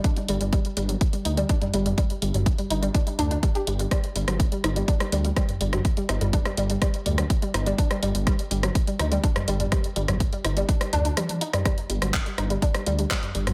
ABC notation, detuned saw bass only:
X:1
M:4/4
L:1/16
Q:1/4=124
K:Cdor
V:1 name="Detuned saw bass" clef=bass
z2 G,,, G,,,2 z G,,,2 z2 D,,2 z2 G,,,2 | z2 G,,, G,,,2 z G,,,2 z2 D,,2 z2 G,,,2 | z2 G,,, G,,,2 z G,,,2 z2 D,,2 z2 G,,,2 | z2 G,,, G,,,2 z G,,,2 z2 D,,2 z2 G,,,2 |
z2 G,,, G,,,2 z G,,,2 z2 D,,2 z2 G,,,2 | z2 G,,, G,,,2 z G,,,2 z2 D,,2 z4 | z2 G,,, G,,,2 z G,,,2 z2 D,,2 z2 G,,,2 |]